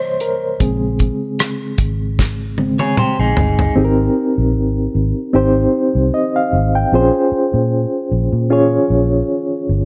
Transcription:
Already playing: reed electric piano C3 G3 A#3 C5 C#5 D#5
0.20 reed electric piano A#4, closed hi-hat
0.60 fingered electric bass A#1, reed electric piano C#3 G#3 C4 G#4, kick, closed hi-hat
0.99 kick, closed hi-hat
1.39 cross-stick, closed hi-hat
1.78 fingered electric bass G#1, kick, closed hi-hat
2.19 kick, snare
2.58 reed electric piano C#3 G#3 C4, high tom
2.79 clean electric guitar G#4 C#5, high tom
2.97 clean electric guitar G4 C5, mid tom
3.19 fingered electric bass A#1, clean electric guitar D#4 G#4
3.37 fingered electric bass G1, floor tom
3.59 floor tom
3.76 fingered electric bass G#1, reed electric piano C4 D#4 G4 G#4
3.85 reed electric piano A#4
4.38 fingered electric bass A#1
4.55 fingered electric bass G#1
4.95 fingered electric bass G#1
5.33 fingered electric bass G#1, reed electric piano C4 D#4 G4 C5
5.95 fingered electric bass C2
6.14 reed electric piano D#5
6.36 reed electric piano F5
6.53 fingered electric bass G#1
6.75 reed electric piano G5
6.92 fingered electric bass A#1, reed electric piano C4 F4 G#4 C5
6.99 reed electric piano C#4
7.32 muted fingered electric bass stroke
7.54 fingered electric bass A#2
8.12 fingered electric bass A#1
8.32 fingered electric bass A#2
8.50 reed electric piano C#4 F4 G#4 C#5
8.90 fingered electric bass A#1
9.69 fingered electric bass G1

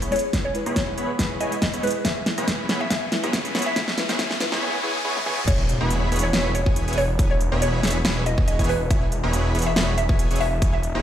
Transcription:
Already playing: riser
0.02 supersaw synth B3 E4 G#4 C#5 B5, closed hi-hat
0.11 synth keys G#3 C#4 E4 G#4, synth pluck C#5, closed hi-hat
0.16 closed hi-hat
0.19 closed hi-hat
0.33 supersaw synth B3 E4 G#4 C#5 G#5, kick, snare, closed hi-hat
0.45 synth pluck C#5
0.54 synth keys G#3 C#4 E4 B4, closed hi-hat
0.66 supersaw synth B3 E4 G#4 C#5 B5, closed hi-hat
0.76 synth pluck C#5, kick, snare, closed hi-hat
0.87 synth keys G#3 C#4 E4 B4
0.98 supersaw synth B3 E4 G#4 C#5 B5, closed hi-hat
1.18 synth keys G#3 C#4 E4 B4, supersaw synth B3 E4 G#4 C#5 B5, kick, snare, closed hi-hat
1.40 supersaw synth B3 E4 G#4 C#5 G#5, synth pluck D#5, closed hi-hat
1.51 synth keys G#3 C#4 E4 B4, closed hi-hat
1.62 synth pluck D#5, kick, snare, closed hi-hat
1.73 supersaw synth B3 E4 G#4 C#5 B5, closed hi-hat
1.82 synth keys G#3 C#4 E4 G#4, synth pluck B4, closed hi-hat
1.87 closed hi-hat
1.91 closed hi-hat
2.05 supersaw synth B3 E4 G#4 C#5 G#5, synth pluck E5, kick, snare, closed hi-hat
2.25 synth keys G#3 C#4 E4 B4, snare, closed hi-hat
2.38 supersaw synth B3 E4 G#4 C#5 B5, closed hi-hat
2.48 kick, snare, closed hi-hat
2.58 synth keys G#3 C#4 E4 B4
2.69 supersaw synth B3 E4 G#4 C#5 B5, snare, closed hi-hat
2.81 synth pluck E5
2.90 supersaw synth B3 E4 G#4 C#5 G#5, synth pluck E5, kick, snare, closed hi-hat
3.11 synth keys G#3 C#4 E4 B4, snare, closed hi-hat
3.23 supersaw synth B3 E4 G#4 C#5 B5, closed hi-hat
3.33 kick, snare, closed hi-hat
3.44 synth keys G#3 C#4 E4 B4, closed hi-hat
3.55 supersaw synth B3 E4 G#4 C#5 B5, snare, closed hi-hat
3.59 closed hi-hat
3.62 closed hi-hat
3.66 synth pluck E5
3.76 supersaw synth B3 E4 G#4 C#5 G#5, synth pluck E5, kick, snare, closed hi-hat
3.88 snare
3.97 synth keys G#3 C#4 E4 B4, snare, closed hi-hat
4.09 supersaw synth B3 E4 G#4 C#5 B5, snare, closed hi-hat
4.19 supersaw synth B3 E4 G#4 C#5 G#5, synth pluck E5, kick, snare, closed hi-hat
4.31 snare
4.39 synth keys G#3 C#4 E4 B4, snare, closed hi-hat
4.52 supersaw synth B3 E4 G#4 C#5 B5, snare
4.62 supersaw synth B3 E4 G#4 C#5 G#5
4.83 supersaw synth B3 E4 G#4 C#5 G#5
5.05 supersaw synth B3 E4 G#4 C#5 G#5
5.16 high tom
5.26 supersaw synth B3 E4 G#4 C#5 G#5, mid tom
5.38 mid tom
5.48 detuned saw bass E1, supersaw synth B3 E4 G#4 C#5 G#5, synth pluck C#5, kick, closed hi-hat, crash, impact
5.69 closed hi-hat
5.81 detuned saw bass E1, supersaw synth B3 E4 G#4 C#5 B5
5.90 closed hi-hat
6.12 detuned saw bass E1, supersaw synth B3 E4 G#4 C#5 B5, closed hi-hat
6.16 closed hi-hat
6.19 closed hi-hat
6.23 synth pluck C#5
6.33 detuned saw bass E1, supersaw synth B3 E4 G#4 C#5 B5, snare, closed hi-hat
6.55 synth pluck C#5, closed hi-hat
6.66 detuned saw bass E1, supersaw synth B3 E4 G#4 C#5 G#5, kick
6.76 closed hi-hat
6.88 detuned saw bass E1, supersaw synth B3 E4 G#4 C#5 G#5, closed hi-hat
6.93 closed hi-hat
6.98 synth pluck C#5, open hi-hat
7.19 detuned saw bass E1, supersaw synth B3 E4 G#4 C#5 G#5, kick, closed hi-hat
7.31 synth pluck C#5
7.41 closed hi-hat
7.52 detuned saw bass E1, supersaw synth B3 E4 G#4 C#5 B5
7.62 synth pluck C#5, closed hi-hat
7.83 detuned saw bass E1, supersaw synth B3 E4 G#4 C#5 B5, snare, closed hi-hat
7.87 closed hi-hat
7.90 closed hi-hat
8.05 detuned saw bass E1, supersaw synth B3 E4 G#4 C#5 B5, snare, closed hi-hat
8.26 synth pluck D#5, closed hi-hat
8.38 detuned saw bass E1, supersaw synth B3 E4 G#4 C#5 G#5, kick
8.48 synth pluck D#5, closed hi-hat
8.59 detuned saw bass E1, supersaw synth B3 E4 G#4 C#5 G#5, kick, closed hi-hat
8.64 closed hi-hat
8.69 synth pluck B4, open hi-hat
8.90 detuned saw bass E1, supersaw synth B3 E4 G#4 C#5 G#5, synth pluck E5, kick, closed hi-hat
9.12 closed hi-hat
9.23 detuned saw bass E1, supersaw synth B3 E4 G#4 C#5 B5
9.33 closed hi-hat
9.55 detuned saw bass E1, supersaw synth B3 E4 G#4 C#5 B5, closed hi-hat
9.59 closed hi-hat
9.62 closed hi-hat
9.66 synth pluck E5
9.76 detuned saw bass E1, supersaw synth B3 E4 G#4 C#5 B5, snare, closed hi-hat
9.98 synth pluck E5, closed hi-hat
10.09 detuned saw bass E1, supersaw synth B3 E4 G#4 C#5 G#5, kick
10.19 closed hi-hat
10.31 detuned saw bass E1, supersaw synth B3 E4 G#4 C#5 G#5, closed hi-hat
10.36 closed hi-hat
10.40 synth pluck E5, open hi-hat
10.62 detuned saw bass E1, supersaw synth B3 E4 G#4 C#5 G#5, kick, closed hi-hat
10.73 synth pluck E5
10.83 closed hi-hat
10.95 detuned saw bass E1, supersaw synth B3 E4 G#4 C#5 B5

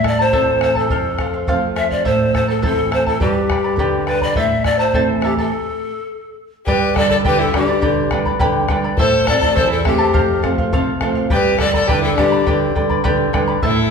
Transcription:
Already playing: nylon-string guitar A2
0.04 charango E4 A4 E5 A5, pan flute D5, bombo rim, bombo low
0.19 charango E4 A4 A5, pan flute C5
0.32 nylon-string guitar E3 A3 C4, charango E4 A4 C5 E5 A5, bombo low
0.61 charango E4 A4 E5 A5, pan flute C5, bombo rim
0.75 charango E4 A4 A5, pan flute A4, bombo low
0.90 nylon-string guitar F2, charango A4 C5 F5, bombo low
1.19 charango A4 C5 F5, bombo rim, bombo low
1.34 charango C5 F5
1.47 nylon-string guitar F3 A3 C4, charango A4 C5 F5, bombo low
1.76 charango A4 C5 F5, pan flute E5, bombo rim
1.90 charango C5 F5, pan flute D5, bombo low
2.05 nylon-string guitar A2, charango E4 A4 C5 E5 A5, pan flute C5, bombo low
2.33 charango E4 A4 E5 A5, pan flute C5, bombo rim, bombo low
2.48 charango E4 A4 A5, pan flute A4
2.62 nylon-string guitar E3 A3 C4, charango E4 A4 C5 E5 A5, pan flute A4, bombo low
2.91 charango E4 A4 E5 A5, pan flute C5, bombo rim
3.06 charango E4 A4 A5, pan flute A4, bombo low
3.20 nylon-string guitar G2, charango G4 B4 D5 G5 B5, pan flute G4, bombo low
3.50 charango B4 D5 G5 B5, bombo rim, bombo low
3.64 charango B4 D5 B5
3.76 nylon-string guitar D3 G3 B3, charango G4 B4 D5 G5 B5, bombo low
4.07 pan flute B4, charango B4 D5 G5 B5, bombo rim
4.21 charango B4 D5 B5, pan flute D5, bombo low
4.35 nylon-string guitar A2, charango E4 A4 C5 E5 A5, pan flute E5, bombo low
4.64 charango E4 A4 E5 A5, pan flute D5, bombo rim, bombo low
4.79 charango E4 A4 A5, pan flute C5
4.93 nylon-string guitar E3 A3 C4, charango E4 A4 C5 E5 A5, bombo low
5.20 charango E4 E5, pan flute G4 A4, bombo rim
5.24 charango A4 A5
5.37 charango E4 A4 A5, pan flute A4, bombo low
6.66 nylon-string guitar G2, violin G4, charango G4 B4 D5 G5 B5, pan flute B4, bombo low
6.96 nylon-string guitar D3 G3 B3, violin A4, charango B4 D5 G5 B5, pan flute D5, bombo rim, bombo low
7.10 violin A4, charango B4 D5 B5, pan flute D5, bombo low
7.24 nylon-string guitar D3, charango G4 B4 D5 G5 B5, violin G4, pan flute B4, bombo low
7.39 violin E4, pan flute A4
7.53 nylon-string guitar D3 G3 B3, violin D4, pan flute G4, charango B4 D5 G5 B5, bombo rim, bombo low
7.68 charango B4 D5 B5
7.81 nylon-string guitar D3, charango G4 B4 D5 G5 B5, bombo low
8.11 nylon-string guitar D3 G3 B3, charango B4 D5 G5 B5, bombo rim, bombo low
8.25 charango B4 D5 B5, bombo low
8.39 nylon-string guitar D3, charango G4 B4 D5 G5 B5, bombo low
8.69 nylon-string guitar D3 G3 B3, charango B4 D5 G5 B5, bombo rim, bombo low
8.84 charango B4 D5 B5
8.97 nylon-string guitar A2, charango E4 A4 C5 E5 A5, violin A4, pan flute C5, bombo low
9.27 nylon-string guitar E3 A3 C4, charango E4 A4 E5 A5, violin A4, pan flute D5, bombo rim, bombo low
9.39 charango E4 A4 A5, violin A4, pan flute D5, bombo low
9.55 nylon-string guitar E2, charango E4 A4 C5 E5 A5, violin A4, pan flute C5, bombo low
9.69 violin E4, pan flute A4
9.84 nylon-string guitar E3 A3 C4, violin C4, charango E4 A4 E5 A5, pan flute G4, bombo rim, bombo low
9.98 charango E4 A4 A5
10.13 nylon-string guitar F2, charango A4 C5 F5, bombo low
10.42 nylon-string guitar F3 A3 C4, charango A4 C5 F5, bombo rim, bombo low
10.58 charango C5 F5, bombo low
10.73 nylon-string guitar C3, charango A4 C5 F5, bombo low
11.01 nylon-string guitar F3 A3 C4, charango A4 C5 F5, bombo rim, bombo low
11.15 charango C5 F5
11.30 nylon-string guitar G2, charango G4 B4 D5 G5 B5, violin G4, pan flute B4, bombo low
11.59 nylon-string guitar D3 G3 B3, violin A4, charango B4 D5 G5 B5, pan flute D5, bombo rim, bombo low
11.73 violin A4, charango B4 D5 B5, pan flute D5, bombo low
11.88 nylon-string guitar D3, violin G4, charango G4 B4 D5 G5 B5, pan flute B4, bombo low
12.01 violin E4, pan flute A4
12.15 nylon-string guitar D3 G3 B3, violin D4, pan flute G4, charango B4 D5 G5 B5, bombo rim, bombo low
12.32 charango B4 D5 B5
12.46 nylon-string guitar D3, charango G4 B4 D5 G5 B5, bombo low
12.75 nylon-string guitar D3 G3 B3, charango B4 D5 G5 B5, bombo low
12.90 charango B4 D5 B5, bombo low
13.04 nylon-string guitar D3, charango G4 B4 D5 G5 B5, bombo low
13.33 nylon-string guitar D3 G3 B3, charango B4 D5 G5 B5, bombo rim, bombo low
13.48 charango B4 D5 B5
13.62 nylon-string guitar A2, charango E4 A4 C5 E5 A5, violin E4, pan flute A4, bombo low

